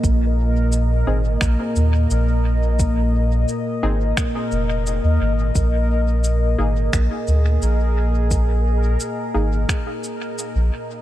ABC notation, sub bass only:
X:1
M:4/4
L:1/16
Q:1/4=87
K:Ablyd
V:1 name="Sub bass" clef=bass
B,,,6 A,,,2 B,,, z E,,2 B,,,4- | B,,,4 z2 A,,,2 z2 F,,,3 E,, A,,,2 | B,,,6 A,,,2 B,,, z D,,2 B,,,4- | B,,,4 z2 A,,,2 z4 z B,,, z2 |]